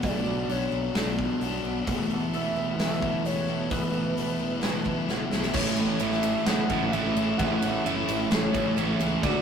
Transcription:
Already playing: overdriven electric guitar B2 F#3 B3 D4, twelve-string acoustic guitar D4
0.03 fingered electric bass B1, overdriven electric guitar B2 F#3 B3 D4, soft synth lead D5, kick, open hi-hat
0.25 fingered electric bass B1, twelve-string acoustic guitar D4
0.48 fingered electric bass B1, overdriven electric guitar B2 F#3 B3, soft synth lead C#5, open hi-hat
0.52 overdriven electric guitar D4
0.72 fingered electric bass B1, twelve-string acoustic guitar F#3
0.94 fingered electric bass B1, overdriven electric guitar B2 F#3 B3 D4, snare, open hi-hat
1.08 snare
1.17 overdriven electric guitar F#3 B3 D4, kick
1.41 fingered electric bass B1, overdriven electric guitar B2 F#3 B3 D4, open hi-hat
1.63 fingered electric bass B1, overdriven electric guitar F#3 B3 D4
1.86 fingered electric bass E1, overdriven electric guitar E3 A3 B3 E4, kick, open hi-hat
2.09 fingered electric bass E1, twelve-string acoustic guitar A4
2.32 fingered electric bass E1, overdriven electric guitar E3 A3 B3, soft synth lead E5, open hi-hat
2.36 overdriven electric guitar E4
2.55 fingered electric bass E1, twelve-string acoustic guitar B3
2.78 fingered electric bass E1, overdriven electric guitar E3 A3 B3 E4, twelve-string acoustic guitar A4, soft synth lead E5, snare, open hi-hat
2.92 snare
3.00 overdriven electric guitar A3 B3 E4, kick
3.23 fingered electric bass E1, overdriven electric guitar E3 A3 B3 E4, soft synth lead C#5, open hi-hat
3.47 fingered electric bass E1, overdriven electric guitar A3 B3 E4, twelve-string acoustic guitar A4
3.69 fingered electric bass E1, overdriven electric guitar E3 A3 B3 E4, soft synth lead B4, kick, open hi-hat
3.93 fingered electric bass E1, twelve-string acoustic guitar A4
4.16 fingered electric bass E1, overdriven electric guitar E3 A3 B3 E4, open hi-hat
4.40 fingered electric bass E1, twelve-string acoustic guitar B3
4.61 fingered electric bass E1, overdriven electric guitar E3 A3 B3 E4, twelve-string acoustic guitar A4, snare, open hi-hat
4.84 overdriven electric guitar A3 B3 E4, kick
5.07 fingered electric bass E1, overdriven electric guitar E3 A3 B3 E4, snare
5.31 fingered electric bass B1, overdriven electric guitar A3 B3 E4, twelve-string acoustic guitar A4, snare
5.42 snare
5.53 fingered electric bass A1, overdriven electric guitar A2 E3 A3 C#4 E4, soft synth lead C#5, kick, crash
5.76 overdriven electric guitar C#4 E4, ride
5.81 overdriven electric guitar A3
6.00 fingered electric bass A1, overdriven electric guitar E3 A3 C#4, soft synth lead E5, ride
6.04 overdriven electric guitar E4
6.12 snare
6.23 twelve-string acoustic guitar E4, ride
6.46 fingered electric bass E2, overdriven electric guitar A2 E3 A3 C#4 E4, twelve-string acoustic guitar G#4, soft synth lead F#5, snare, ride
6.69 fingered electric bass A1, overdriven electric guitar A3 C#4 E4, kick, ride
6.91 fingered electric bass A1, overdriven electric guitar A2 E3 A3, soft synth lead E5, ride
6.95 overdriven electric guitar C#4 E4
7.15 fingered electric bass A1, overdriven electric guitar A3 C#4 E4, ride
7.38 fingered electric bass A1, overdriven electric guitar A2 E3 A3 C#4, soft synth lead F#5, kick, ride
7.42 overdriven electric guitar E4
7.62 fingered electric bass A1, overdriven electric guitar C#4 E4, ride
7.66 overdriven electric guitar A3
7.85 fingered electric bass F#1, overdriven electric guitar E3 A3 C#4 E4, soft synth lead E5, ride
8.08 fingered electric bass A1, twelve-string acoustic guitar E4, ride
8.30 fingered electric bass A1, overdriven electric guitar A2 E3 A3 C#4 E4, twelve-string acoustic guitar G#4, soft synth lead C#5, snare, ride
8.53 fingered electric bass A1, overdriven electric guitar A3 C#4 E4, kick, ride
8.76 fingered electric bass A1, overdriven electric guitar A2 E3 A3 C#4 E4, ride
8.98 fingered electric bass C#2, overdriven electric guitar A3 C#4 E4, ride
9.22 fingered electric bass D2, overdriven electric guitar D3 A3 D4 F#4, twelve-string acoustic guitar F#3, soft synth lead D5, kick, ride

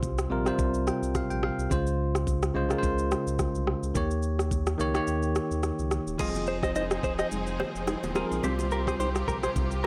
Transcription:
Already playing: sub bass C2, tine electric piano C3 G3 F4 C5
0.03 kick, shaker
0.18 cross-stick, shaker
0.30 sub bass A#1, tine electric piano C3 G3 F4 A#4
0.45 tine electric piano C3 G3 F4 C5, cross-stick, shaker
0.59 sub bass C2, kick, shaker
0.74 shaker
0.87 tine electric piano G5, cross-stick, shaker
1.02 sub bass C2, shaker
1.15 tine electric piano F5, kick, cross-stick, shaker
1.30 sub bass A#1, tine electric piano G5, shaker
1.43 tine electric piano F5, cross-stick
1.58 sub bass C2, shaker
1.70 sub bass C#2, tine electric piano C#3 G#3 F4 C5, kick, shaker
1.87 shaker
2.15 cross-stick, shaker
2.27 kick, shaker
2.42 cross-stick, shaker
2.54 sub bass C2, tine electric piano C#3 G#3 F4 C5
2.69 tine electric piano C#3 G#3 F4 A#4, cross-stick, shaker
2.79 tine electric piano C5
2.83 sub bass C#2, kick, shaker
2.98 shaker
3.11 cross-stick, shaker
3.27 sub bass C#2, shaker
3.39 kick, cross-stick, shaker
3.55 sub bass C2, shaker
3.67 cross-stick
3.83 sub bass C#2, shaker
3.94 sub bass D#2, tine electric piano D#3 A#3 G4 C#5, kick, shaker
4.11 shaker
4.22 shaker
4.39 cross-stick, shaker
4.51 kick, shaker
4.67 cross-stick, shaker
4.78 sub bass C#2, tine electric piano D#3 A#3 G4 C#5, shaker
4.94 tine electric piano D#3 A#3 G4 C#5, cross-stick, shaker
5.07 sub bass D#2, shaker
5.22 shaker
5.35 cross-stick, shaker
5.51 sub bass D#2, shaker
5.63 cross-stick, shaker
5.79 sub bass C#2, shaker
5.91 cross-stick, shaker
6.07 sub bass D#1, shaker
6.18 sub bass F1, tine electric piano F3 C4 G#4 D#5, string section F3 C4 D#4 G#4, clean electric guitar F4 G#4, kick, crash, low conga, shaker
6.35 low bongo, shaker
6.47 clean electric guitar G#4 C5, shaker
6.63 clean electric guitar C5 D#5, kick, cross-stick, shaker
6.76 clean electric guitar C5 D#5, high bongo, shaker
6.91 cross-stick, shaker
7.03 sub bass D#1, clean electric guitar G#4 C5, kick, shaker
7.19 clean electric guitar C5 D#5, cross-stick, shaker
7.31 sub bass F1, low conga, shaker
7.47 shaker
7.60 clean electric guitar G#4 C5, cross-stick, low bongo
7.75 sub bass F1, shaker
7.87 cross-stick, high bongo, shaker
8.03 sub bass D#1, low bongo, shaker
8.14 tine electric piano F3 C4 G#4 A#4, clean electric guitar F4 G#4, cross-stick, low conga, shaker
8.31 sub bass A#1, high bongo, shaker
8.42 sub bass C2, tine electric piano C3 G3 F4 C5, string section C3 F4 G4, clean electric guitar C4 G4, low conga, shaker
8.59 low bongo, shaker
8.71 clean electric guitar G4 A#4, shaker
8.87 clean electric guitar G#4 C5, kick, cross-stick, shaker
9.00 clean electric guitar G4 C5, high bongo, shaker
9.15 cross-stick, shaker
9.28 sub bass A#1, clean electric guitar G4 A#4, kick, shaker
9.43 clean electric guitar G#4 C5, cross-stick, shaker
9.56 sub bass C2, kick, low conga, shaker
9.71 shaker

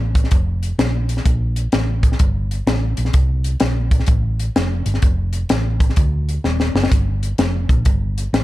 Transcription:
Already playing: fingered electric bass A1
0.15 kick, closed hi-hat
0.24 snare
0.31 fingered electric bass F1, kick, closed hi-hat
0.63 closed hi-hat
0.78 fingered electric bass A#1, snare, closed hi-hat
1.09 closed hi-hat
1.17 snare
1.25 fingered electric bass A#1, kick, closed hi-hat
1.56 closed hi-hat
1.72 fingered electric bass A1, snare, closed hi-hat
2.03 kick, closed hi-hat
2.12 snare
2.19 fingered electric bass G1, kick, closed hi-hat
2.51 closed hi-hat
2.67 fingered electric bass A1, snare, closed hi-hat
2.97 fingered electric bass A#1, closed hi-hat
3.05 snare
3.13 fingered electric bass C2, kick, closed hi-hat
3.44 closed hi-hat
3.60 fingered electric bass A#1, snare, closed hi-hat
3.91 kick, closed hi-hat
4.00 snare
4.06 fingered electric bass A1, kick, closed hi-hat
4.39 closed hi-hat
4.56 fingered electric bass F1, snare, closed hi-hat
4.86 fingered electric bass G1, closed hi-hat
4.94 snare
5.02 fingered electric bass F1, kick, closed hi-hat
5.33 closed hi-hat
5.49 fingered electric bass A1, snare, closed hi-hat
5.80 kick, closed hi-hat
5.89 snare
5.96 fingered electric bass D2, kick, closed hi-hat
6.29 closed hi-hat
6.44 fingered electric bass D#1, snare
6.60 snare
6.75 fingered electric bass F#1, snare
6.84 snare
6.92 fingered electric bass G1, kick, closed hi-hat
7.23 closed hi-hat
7.38 fingered electric bass F1, snare, closed hi-hat
7.69 fingered electric bass A#1, kick, closed hi-hat
7.85 fingered electric bass G1, kick, closed hi-hat
8.18 closed hi-hat
8.33 fingered electric bass A1, snare, closed hi-hat

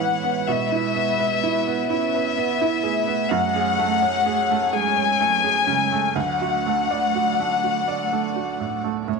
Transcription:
Already playing: felt piano A2 B3 E4 C#5, string section B3 E4 C#5, violin section F#5
0.00 felt piano E3, cello G#3
0.24 felt piano B3
0.48 felt piano B2, string section B4, violin section E5
0.72 felt piano E4
0.95 felt piano B3
1.18 felt piano B4
1.43 felt piano E4
1.67 felt piano B3
1.88 cello C#4, felt piano E4, violin section E5
2.15 felt piano B4
2.36 cello B3, felt piano B3
2.61 felt piano E4
2.83 cello A3, felt piano G#4
3.07 felt piano B3
3.30 felt piano F#2, string section F#3 G#4 C#5, violin section F#5
3.56 felt piano G#4
3.79 felt piano A3
4.02 felt piano C#5
4.26 felt piano G#4
4.50 felt piano A3
4.73 cello G#3, felt piano G#4, violin section G#5
4.96 felt piano C#5
5.20 cello F#3, felt piano A3
5.44 felt piano G#4
5.67 felt piano C#3, cello G#3
5.92 felt piano A3
6.16 felt piano D2, cello A3, string section F#4 D5, violin section F#5
6.41 felt piano F#4
6.66 felt piano A3
6.91 felt piano D5
7.15 felt piano F#4
7.40 felt piano A3
7.64 felt piano F#4
7.88 felt piano D5
8.12 felt piano A3
8.36 felt piano F#4
8.60 felt piano A2
8.84 felt piano A3
9.07 felt piano A2, cello B3, string section B3 E4 C#5, violin section C#5

